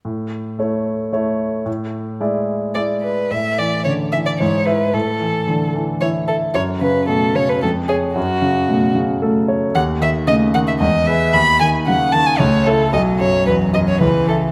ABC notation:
X:1
M:3/4
L:1/16
Q:1/4=112
K:A
V:1 name="Violin"
z12 | z8 d2 B2 | e2 d2 c2 e d c2 B2 | A6 z2 c2 A2 |
c2 B2 A2 c B A2 G2 | F6 z6 | [K:Bmix] f2 e2 d2 f e d2 e2 | b2 g2 f2 a g c2 A2 |
d2 c2 B2 d c B2 A2 |]
V:2 name="Cello" clef=bass
z12 | z12 | z4 C,4 E,4 | z4 E,4 E,4 |
z4 A,4 G,4 | z4 A,4 A,4 | [K:Bmix] z4 A,4 G,4 | z4 F,4 A,4 |
F,4 F,4 E,4 |]
V:3 name="Grand piano" clef=bass
A,,4 [A,Ec]4 [A,Ec]4 | A,,4 [G,Ed]4 [G,Ed]4 | A,,2 E,2 D,2 E,2 G,,2 [Ee]2 | A,,2 E,2 D,2 E,2 E2 e2 |
F,,2 C,2 B,,2 C,2 ^E,,2 [Gc]2 | F,,2 C,2 B,,2 C,2 A2 c2 | [K:Bmix] D,,2 D,2 C,2 D,2 E,,2 [GB]2 | D,,2 D,2 C,2 D,2 C,,2 [EA]2 |
B,,,2 F,,2 E,,2 F,,2 C,,2 [Ee]2 |]